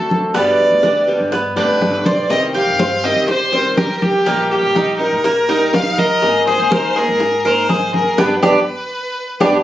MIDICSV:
0, 0, Header, 1, 7, 480
1, 0, Start_track
1, 0, Tempo, 489796
1, 339, Time_signature, 4, 2, 24, 8
1, 9439, End_track
2, 0, Start_track
2, 0, Title_t, "Violin"
2, 0, Program_c, 0, 40
2, 0, Note_on_c, 0, 69, 81
2, 106, Note_off_c, 0, 69, 0
2, 346, Note_on_c, 0, 74, 106
2, 1263, Note_off_c, 0, 74, 0
2, 1542, Note_on_c, 0, 71, 86
2, 2019, Note_on_c, 0, 74, 92
2, 2033, Note_off_c, 0, 71, 0
2, 2251, Note_off_c, 0, 74, 0
2, 2257, Note_on_c, 0, 75, 95
2, 2365, Note_off_c, 0, 75, 0
2, 2495, Note_on_c, 0, 77, 99
2, 2989, Note_on_c, 0, 75, 104
2, 3003, Note_off_c, 0, 77, 0
2, 3223, Note_off_c, 0, 75, 0
2, 3228, Note_on_c, 0, 72, 105
2, 3670, Note_off_c, 0, 72, 0
2, 3710, Note_on_c, 0, 70, 87
2, 3942, Note_on_c, 0, 67, 100
2, 3957, Note_off_c, 0, 70, 0
2, 4417, Note_off_c, 0, 67, 0
2, 4423, Note_on_c, 0, 67, 89
2, 4867, Note_off_c, 0, 67, 0
2, 4907, Note_on_c, 0, 70, 99
2, 5629, Note_on_c, 0, 77, 97
2, 5644, Note_off_c, 0, 70, 0
2, 5871, Note_on_c, 0, 75, 104
2, 5885, Note_off_c, 0, 77, 0
2, 6345, Note_off_c, 0, 75, 0
2, 6356, Note_on_c, 0, 72, 89
2, 6843, Note_on_c, 0, 70, 100
2, 6858, Note_off_c, 0, 72, 0
2, 7320, Note_on_c, 0, 72, 91
2, 7335, Note_off_c, 0, 70, 0
2, 7791, Note_off_c, 0, 72, 0
2, 7800, Note_on_c, 0, 70, 81
2, 8038, Note_on_c, 0, 71, 82
2, 8053, Note_off_c, 0, 70, 0
2, 9439, Note_off_c, 0, 71, 0
2, 9439, End_track
3, 0, Start_track
3, 0, Title_t, "Cuban tres"
3, 0, Program_c, 1, 25
3, 0, Note_on_c, 1, 69, 70
3, 323, Note_off_c, 1, 69, 0
3, 338, Note_on_c, 1, 59, 78
3, 804, Note_off_c, 1, 59, 0
3, 814, Note_on_c, 1, 62, 63
3, 1281, Note_off_c, 1, 62, 0
3, 1296, Note_on_c, 1, 59, 74
3, 1529, Note_off_c, 1, 59, 0
3, 1536, Note_on_c, 1, 62, 75
3, 2002, Note_off_c, 1, 62, 0
3, 2020, Note_on_c, 1, 72, 75
3, 2484, Note_off_c, 1, 72, 0
3, 2495, Note_on_c, 1, 67, 69
3, 2729, Note_off_c, 1, 67, 0
3, 2739, Note_on_c, 1, 72, 58
3, 2971, Note_off_c, 1, 72, 0
3, 2977, Note_on_c, 1, 67, 71
3, 3443, Note_off_c, 1, 67, 0
3, 3456, Note_on_c, 1, 72, 67
3, 3690, Note_off_c, 1, 72, 0
3, 3699, Note_on_c, 1, 67, 66
3, 4164, Note_off_c, 1, 67, 0
3, 4180, Note_on_c, 1, 58, 76
3, 4645, Note_off_c, 1, 58, 0
3, 4665, Note_on_c, 1, 63, 59
3, 5128, Note_off_c, 1, 63, 0
3, 5142, Note_on_c, 1, 58, 78
3, 5374, Note_off_c, 1, 58, 0
3, 5381, Note_on_c, 1, 63, 76
3, 5846, Note_off_c, 1, 63, 0
3, 5860, Note_on_c, 1, 70, 72
3, 6326, Note_off_c, 1, 70, 0
3, 6344, Note_on_c, 1, 68, 77
3, 6575, Note_off_c, 1, 68, 0
3, 6583, Note_on_c, 1, 70, 58
3, 6815, Note_off_c, 1, 70, 0
3, 6820, Note_on_c, 1, 68, 74
3, 7286, Note_off_c, 1, 68, 0
3, 7302, Note_on_c, 1, 70, 76
3, 7534, Note_off_c, 1, 70, 0
3, 7539, Note_on_c, 1, 68, 65
3, 8005, Note_off_c, 1, 68, 0
3, 8018, Note_on_c, 1, 59, 95
3, 8025, Note_on_c, 1, 62, 93
3, 8028, Note_on_c, 1, 67, 78
3, 8175, Note_off_c, 1, 59, 0
3, 8175, Note_off_c, 1, 67, 0
3, 8176, Note_off_c, 1, 62, 0
3, 8257, Note_on_c, 1, 67, 101
3, 8261, Note_on_c, 1, 62, 99
3, 8267, Note_on_c, 1, 59, 90
3, 8413, Note_off_c, 1, 62, 0
3, 8413, Note_off_c, 1, 67, 0
3, 8414, Note_off_c, 1, 59, 0
3, 9218, Note_on_c, 1, 67, 86
3, 9221, Note_on_c, 1, 62, 95
3, 9226, Note_on_c, 1, 59, 85
3, 9373, Note_off_c, 1, 62, 0
3, 9374, Note_off_c, 1, 59, 0
3, 9374, Note_off_c, 1, 67, 0
3, 9439, End_track
4, 0, Start_track
4, 0, Title_t, "Steel-string acoustic guitar"
4, 0, Program_c, 2, 25
4, 0, Note_on_c, 2, 50, 49
4, 0, Note_on_c, 2, 57, 50
4, 0, Note_on_c, 2, 60, 54
4, 0, Note_on_c, 2, 66, 53
4, 326, Note_off_c, 2, 50, 0
4, 329, Note_off_c, 2, 57, 0
4, 332, Note_off_c, 2, 60, 0
4, 332, Note_on_c, 2, 47, 72
4, 335, Note_off_c, 2, 66, 0
4, 339, Note_on_c, 2, 50, 81
4, 342, Note_on_c, 2, 55, 68
4, 347, Note_on_c, 2, 59, 76
4, 351, Note_on_c, 2, 67, 89
4, 801, Note_off_c, 2, 50, 0
4, 806, Note_off_c, 2, 47, 0
4, 811, Note_off_c, 2, 55, 0
4, 812, Note_on_c, 2, 50, 48
4, 813, Note_off_c, 2, 59, 0
4, 815, Note_off_c, 2, 67, 0
4, 821, Note_on_c, 2, 55, 50
4, 827, Note_on_c, 2, 59, 55
4, 831, Note_on_c, 2, 67, 52
4, 1040, Note_off_c, 2, 67, 0
4, 1046, Note_off_c, 2, 50, 0
4, 1046, Note_off_c, 2, 59, 0
4, 1050, Note_off_c, 2, 55, 0
4, 1052, Note_on_c, 2, 67, 66
4, 1058, Note_on_c, 2, 59, 61
4, 1065, Note_on_c, 2, 55, 62
4, 1069, Note_on_c, 2, 50, 62
4, 1286, Note_off_c, 2, 67, 0
4, 1288, Note_off_c, 2, 50, 0
4, 1288, Note_off_c, 2, 55, 0
4, 1288, Note_off_c, 2, 59, 0
4, 1531, Note_on_c, 2, 67, 71
4, 1537, Note_on_c, 2, 59, 57
4, 1543, Note_on_c, 2, 55, 56
4, 1546, Note_on_c, 2, 50, 54
4, 1753, Note_off_c, 2, 50, 0
4, 1762, Note_off_c, 2, 55, 0
4, 1765, Note_off_c, 2, 67, 0
4, 1765, Note_on_c, 2, 50, 50
4, 1768, Note_off_c, 2, 59, 0
4, 1774, Note_on_c, 2, 55, 49
4, 1778, Note_on_c, 2, 59, 58
4, 1782, Note_on_c, 2, 67, 51
4, 2241, Note_off_c, 2, 55, 0
4, 2242, Note_off_c, 2, 50, 0
4, 2245, Note_on_c, 2, 48, 78
4, 2248, Note_off_c, 2, 59, 0
4, 2250, Note_off_c, 2, 67, 0
4, 2251, Note_on_c, 2, 51, 72
4, 2253, Note_on_c, 2, 55, 73
4, 2258, Note_on_c, 2, 60, 81
4, 2262, Note_on_c, 2, 67, 74
4, 2717, Note_off_c, 2, 51, 0
4, 2722, Note_off_c, 2, 48, 0
4, 2724, Note_off_c, 2, 55, 0
4, 2728, Note_off_c, 2, 60, 0
4, 2729, Note_on_c, 2, 51, 49
4, 2730, Note_off_c, 2, 67, 0
4, 2735, Note_on_c, 2, 55, 47
4, 2744, Note_on_c, 2, 60, 52
4, 2747, Note_on_c, 2, 67, 54
4, 2960, Note_off_c, 2, 67, 0
4, 2964, Note_off_c, 2, 51, 0
4, 2967, Note_off_c, 2, 55, 0
4, 2967, Note_off_c, 2, 60, 0
4, 2972, Note_on_c, 2, 67, 65
4, 2979, Note_on_c, 2, 60, 64
4, 2984, Note_on_c, 2, 55, 65
4, 2990, Note_on_c, 2, 51, 57
4, 3205, Note_off_c, 2, 67, 0
4, 3206, Note_off_c, 2, 51, 0
4, 3209, Note_off_c, 2, 55, 0
4, 3209, Note_off_c, 2, 60, 0
4, 3449, Note_on_c, 2, 67, 65
4, 3458, Note_on_c, 2, 60, 56
4, 3463, Note_on_c, 2, 55, 56
4, 3467, Note_on_c, 2, 51, 55
4, 3675, Note_off_c, 2, 51, 0
4, 3684, Note_off_c, 2, 55, 0
4, 3684, Note_off_c, 2, 67, 0
4, 3687, Note_on_c, 2, 51, 50
4, 3688, Note_off_c, 2, 60, 0
4, 3696, Note_on_c, 2, 55, 50
4, 3702, Note_on_c, 2, 60, 52
4, 3706, Note_on_c, 2, 67, 53
4, 4163, Note_off_c, 2, 51, 0
4, 4168, Note_off_c, 2, 55, 0
4, 4170, Note_off_c, 2, 60, 0
4, 4173, Note_off_c, 2, 67, 0
4, 4173, Note_on_c, 2, 53, 65
4, 4178, Note_on_c, 2, 55, 80
4, 4187, Note_on_c, 2, 63, 80
4, 4190, Note_on_c, 2, 67, 82
4, 4638, Note_off_c, 2, 53, 0
4, 4643, Note_off_c, 2, 55, 0
4, 4649, Note_off_c, 2, 63, 0
4, 4650, Note_on_c, 2, 53, 50
4, 4655, Note_off_c, 2, 67, 0
4, 4655, Note_on_c, 2, 55, 51
4, 4661, Note_on_c, 2, 63, 57
4, 4667, Note_on_c, 2, 67, 58
4, 4881, Note_off_c, 2, 67, 0
4, 4885, Note_off_c, 2, 53, 0
4, 4887, Note_off_c, 2, 55, 0
4, 4890, Note_off_c, 2, 63, 0
4, 4892, Note_on_c, 2, 67, 62
4, 4903, Note_on_c, 2, 63, 67
4, 4911, Note_on_c, 2, 55, 57
4, 5126, Note_off_c, 2, 67, 0
4, 5130, Note_off_c, 2, 55, 0
4, 5131, Note_off_c, 2, 63, 0
4, 5374, Note_on_c, 2, 67, 74
4, 5384, Note_on_c, 2, 63, 57
4, 5391, Note_on_c, 2, 55, 56
4, 5607, Note_off_c, 2, 67, 0
4, 5608, Note_off_c, 2, 55, 0
4, 5612, Note_off_c, 2, 63, 0
4, 5615, Note_on_c, 2, 53, 50
4, 5620, Note_on_c, 2, 55, 53
4, 5628, Note_on_c, 2, 63, 46
4, 5630, Note_on_c, 2, 67, 54
4, 6088, Note_off_c, 2, 53, 0
4, 6090, Note_off_c, 2, 55, 0
4, 6094, Note_off_c, 2, 63, 0
4, 6096, Note_off_c, 2, 67, 0
4, 6097, Note_on_c, 2, 56, 71
4, 6101, Note_on_c, 2, 58, 74
4, 6107, Note_on_c, 2, 63, 78
4, 6114, Note_on_c, 2, 68, 76
4, 6566, Note_off_c, 2, 56, 0
4, 6569, Note_off_c, 2, 58, 0
4, 6574, Note_off_c, 2, 63, 0
4, 6577, Note_on_c, 2, 56, 45
4, 6578, Note_off_c, 2, 68, 0
4, 6581, Note_on_c, 2, 58, 52
4, 6590, Note_on_c, 2, 63, 57
4, 6592, Note_on_c, 2, 68, 60
4, 6804, Note_off_c, 2, 68, 0
4, 6809, Note_off_c, 2, 56, 0
4, 6811, Note_off_c, 2, 58, 0
4, 6813, Note_off_c, 2, 63, 0
4, 6815, Note_on_c, 2, 68, 65
4, 6825, Note_on_c, 2, 63, 65
4, 6834, Note_on_c, 2, 58, 57
4, 7046, Note_off_c, 2, 58, 0
4, 7048, Note_off_c, 2, 68, 0
4, 7051, Note_off_c, 2, 63, 0
4, 7296, Note_on_c, 2, 68, 69
4, 7305, Note_on_c, 2, 63, 65
4, 7315, Note_on_c, 2, 58, 52
4, 7527, Note_off_c, 2, 58, 0
4, 7529, Note_off_c, 2, 68, 0
4, 7533, Note_on_c, 2, 56, 51
4, 7534, Note_off_c, 2, 63, 0
4, 7539, Note_on_c, 2, 58, 57
4, 7546, Note_on_c, 2, 63, 57
4, 7551, Note_on_c, 2, 68, 53
4, 8008, Note_off_c, 2, 56, 0
4, 8011, Note_off_c, 2, 58, 0
4, 8014, Note_off_c, 2, 63, 0
4, 8017, Note_off_c, 2, 68, 0
4, 8018, Note_on_c, 2, 55, 89
4, 8019, Note_on_c, 2, 62, 103
4, 8022, Note_on_c, 2, 59, 91
4, 8172, Note_off_c, 2, 59, 0
4, 8172, Note_off_c, 2, 62, 0
4, 8173, Note_off_c, 2, 55, 0
4, 8257, Note_on_c, 2, 59, 92
4, 8258, Note_on_c, 2, 62, 89
4, 8263, Note_on_c, 2, 55, 76
4, 8412, Note_off_c, 2, 62, 0
4, 8413, Note_off_c, 2, 55, 0
4, 8413, Note_off_c, 2, 59, 0
4, 9213, Note_on_c, 2, 59, 84
4, 9222, Note_on_c, 2, 62, 84
4, 9225, Note_on_c, 2, 55, 80
4, 9372, Note_off_c, 2, 55, 0
4, 9372, Note_off_c, 2, 59, 0
4, 9373, Note_off_c, 2, 62, 0
4, 9439, End_track
5, 0, Start_track
5, 0, Title_t, "Upright bass"
5, 0, Program_c, 3, 32
5, 0, Note_on_c, 3, 50, 77
5, 179, Note_off_c, 3, 50, 0
5, 334, Note_on_c, 3, 31, 85
5, 678, Note_off_c, 3, 31, 0
5, 692, Note_on_c, 3, 38, 82
5, 1151, Note_off_c, 3, 38, 0
5, 1172, Note_on_c, 3, 43, 79
5, 1517, Note_off_c, 3, 43, 0
5, 1531, Note_on_c, 3, 29, 85
5, 1750, Note_off_c, 3, 29, 0
5, 1771, Note_on_c, 3, 31, 79
5, 1990, Note_off_c, 3, 31, 0
5, 2013, Note_on_c, 3, 35, 79
5, 2231, Note_off_c, 3, 35, 0
5, 2254, Note_on_c, 3, 36, 93
5, 2598, Note_off_c, 3, 36, 0
5, 2614, Note_on_c, 3, 43, 80
5, 3072, Note_off_c, 3, 43, 0
5, 3093, Note_on_c, 3, 48, 71
5, 4016, Note_off_c, 3, 48, 0
5, 4172, Note_on_c, 3, 34, 85
5, 4517, Note_off_c, 3, 34, 0
5, 4537, Note_on_c, 3, 34, 78
5, 4994, Note_off_c, 3, 34, 0
5, 5019, Note_on_c, 3, 46, 78
5, 5941, Note_off_c, 3, 46, 0
5, 6099, Note_on_c, 3, 32, 92
5, 6442, Note_off_c, 3, 32, 0
5, 6458, Note_on_c, 3, 39, 86
5, 6916, Note_off_c, 3, 39, 0
5, 6942, Note_on_c, 3, 44, 75
5, 7862, Note_off_c, 3, 44, 0
5, 8019, Note_on_c, 3, 31, 93
5, 8198, Note_off_c, 3, 31, 0
5, 8257, Note_on_c, 3, 31, 91
5, 8438, Note_off_c, 3, 31, 0
5, 9216, Note_on_c, 3, 31, 92
5, 9396, Note_off_c, 3, 31, 0
5, 9439, End_track
6, 0, Start_track
6, 0, Title_t, "Muted steel-string acoustic guitar strokes"
6, 1296, Note_on_c, 9, 29, 61
6, 1394, Note_off_c, 9, 29, 0
6, 3214, Note_on_c, 9, 29, 61
6, 3312, Note_off_c, 9, 29, 0
6, 5139, Note_on_c, 9, 29, 61
6, 5237, Note_off_c, 9, 29, 0
6, 7055, Note_on_c, 9, 29, 59
6, 7153, Note_off_c, 9, 29, 0
6, 9439, End_track
7, 0, Start_track
7, 0, Title_t, "Drums"
7, 99, Note_on_c, 9, 60, 31
7, 110, Note_on_c, 9, 63, 74
7, 197, Note_off_c, 9, 60, 0
7, 208, Note_off_c, 9, 63, 0
7, 338, Note_on_c, 9, 60, 67
7, 342, Note_on_c, 9, 63, 33
7, 436, Note_off_c, 9, 60, 0
7, 440, Note_off_c, 9, 63, 0
7, 577, Note_on_c, 9, 60, 36
7, 586, Note_on_c, 9, 63, 34
7, 675, Note_off_c, 9, 60, 0
7, 684, Note_off_c, 9, 63, 0
7, 813, Note_on_c, 9, 60, 59
7, 821, Note_on_c, 9, 63, 58
7, 911, Note_off_c, 9, 60, 0
7, 919, Note_off_c, 9, 63, 0
7, 1055, Note_on_c, 9, 60, 34
7, 1061, Note_on_c, 9, 63, 32
7, 1153, Note_off_c, 9, 60, 0
7, 1159, Note_off_c, 9, 63, 0
7, 1295, Note_on_c, 9, 60, 66
7, 1306, Note_on_c, 9, 63, 35
7, 1393, Note_off_c, 9, 60, 0
7, 1404, Note_off_c, 9, 63, 0
7, 1541, Note_on_c, 9, 63, 33
7, 1639, Note_off_c, 9, 63, 0
7, 1779, Note_on_c, 9, 60, 34
7, 1779, Note_on_c, 9, 61, 77
7, 1780, Note_on_c, 9, 63, 78
7, 1877, Note_off_c, 9, 60, 0
7, 1877, Note_off_c, 9, 61, 0
7, 1878, Note_off_c, 9, 63, 0
7, 2015, Note_on_c, 9, 60, 33
7, 2017, Note_on_c, 9, 63, 85
7, 2113, Note_off_c, 9, 60, 0
7, 2115, Note_off_c, 9, 63, 0
7, 2257, Note_on_c, 9, 63, 34
7, 2258, Note_on_c, 9, 60, 69
7, 2355, Note_off_c, 9, 63, 0
7, 2356, Note_off_c, 9, 60, 0
7, 2495, Note_on_c, 9, 60, 37
7, 2499, Note_on_c, 9, 63, 33
7, 2593, Note_off_c, 9, 60, 0
7, 2597, Note_off_c, 9, 63, 0
7, 2738, Note_on_c, 9, 63, 84
7, 2739, Note_on_c, 9, 60, 55
7, 2836, Note_off_c, 9, 63, 0
7, 2837, Note_off_c, 9, 60, 0
7, 2980, Note_on_c, 9, 60, 36
7, 3078, Note_off_c, 9, 60, 0
7, 3216, Note_on_c, 9, 60, 68
7, 3221, Note_on_c, 9, 63, 33
7, 3314, Note_off_c, 9, 60, 0
7, 3319, Note_off_c, 9, 63, 0
7, 3458, Note_on_c, 9, 63, 34
7, 3556, Note_off_c, 9, 63, 0
7, 3697, Note_on_c, 9, 60, 31
7, 3697, Note_on_c, 9, 61, 74
7, 3700, Note_on_c, 9, 63, 73
7, 3795, Note_off_c, 9, 60, 0
7, 3795, Note_off_c, 9, 61, 0
7, 3798, Note_off_c, 9, 63, 0
7, 3938, Note_on_c, 9, 60, 31
7, 3942, Note_on_c, 9, 63, 79
7, 4036, Note_off_c, 9, 60, 0
7, 4040, Note_off_c, 9, 63, 0
7, 4178, Note_on_c, 9, 60, 64
7, 4179, Note_on_c, 9, 63, 35
7, 4276, Note_off_c, 9, 60, 0
7, 4277, Note_off_c, 9, 63, 0
7, 4421, Note_on_c, 9, 60, 36
7, 4424, Note_on_c, 9, 63, 33
7, 4519, Note_off_c, 9, 60, 0
7, 4522, Note_off_c, 9, 63, 0
7, 4660, Note_on_c, 9, 60, 50
7, 4667, Note_on_c, 9, 63, 62
7, 4758, Note_off_c, 9, 60, 0
7, 4765, Note_off_c, 9, 63, 0
7, 4900, Note_on_c, 9, 60, 34
7, 4909, Note_on_c, 9, 63, 33
7, 4998, Note_off_c, 9, 60, 0
7, 5007, Note_off_c, 9, 63, 0
7, 5138, Note_on_c, 9, 60, 70
7, 5147, Note_on_c, 9, 63, 34
7, 5236, Note_off_c, 9, 60, 0
7, 5245, Note_off_c, 9, 63, 0
7, 5388, Note_on_c, 9, 63, 33
7, 5486, Note_off_c, 9, 63, 0
7, 5620, Note_on_c, 9, 60, 33
7, 5620, Note_on_c, 9, 61, 77
7, 5625, Note_on_c, 9, 63, 70
7, 5718, Note_off_c, 9, 60, 0
7, 5718, Note_off_c, 9, 61, 0
7, 5723, Note_off_c, 9, 63, 0
7, 5859, Note_on_c, 9, 60, 33
7, 5865, Note_on_c, 9, 63, 80
7, 5957, Note_off_c, 9, 60, 0
7, 5963, Note_off_c, 9, 63, 0
7, 6098, Note_on_c, 9, 60, 65
7, 6110, Note_on_c, 9, 63, 35
7, 6196, Note_off_c, 9, 60, 0
7, 6208, Note_off_c, 9, 63, 0
7, 6337, Note_on_c, 9, 60, 34
7, 6344, Note_on_c, 9, 63, 34
7, 6435, Note_off_c, 9, 60, 0
7, 6442, Note_off_c, 9, 63, 0
7, 6577, Note_on_c, 9, 60, 50
7, 6582, Note_on_c, 9, 63, 97
7, 6675, Note_off_c, 9, 60, 0
7, 6680, Note_off_c, 9, 63, 0
7, 6820, Note_on_c, 9, 60, 33
7, 6918, Note_off_c, 9, 60, 0
7, 7058, Note_on_c, 9, 60, 70
7, 7067, Note_on_c, 9, 63, 36
7, 7156, Note_off_c, 9, 60, 0
7, 7165, Note_off_c, 9, 63, 0
7, 7306, Note_on_c, 9, 63, 31
7, 7404, Note_off_c, 9, 63, 0
7, 7539, Note_on_c, 9, 60, 32
7, 7539, Note_on_c, 9, 61, 73
7, 7542, Note_on_c, 9, 63, 81
7, 7637, Note_off_c, 9, 60, 0
7, 7637, Note_off_c, 9, 61, 0
7, 7640, Note_off_c, 9, 63, 0
7, 7779, Note_on_c, 9, 60, 32
7, 7781, Note_on_c, 9, 63, 77
7, 7877, Note_off_c, 9, 60, 0
7, 7879, Note_off_c, 9, 63, 0
7, 8017, Note_on_c, 9, 60, 91
7, 8023, Note_on_c, 9, 63, 95
7, 8115, Note_off_c, 9, 60, 0
7, 8121, Note_off_c, 9, 63, 0
7, 8257, Note_on_c, 9, 60, 99
7, 8263, Note_on_c, 9, 63, 99
7, 8355, Note_off_c, 9, 60, 0
7, 8361, Note_off_c, 9, 63, 0
7, 9217, Note_on_c, 9, 63, 95
7, 9219, Note_on_c, 9, 60, 98
7, 9315, Note_off_c, 9, 63, 0
7, 9317, Note_off_c, 9, 60, 0
7, 9439, End_track
0, 0, End_of_file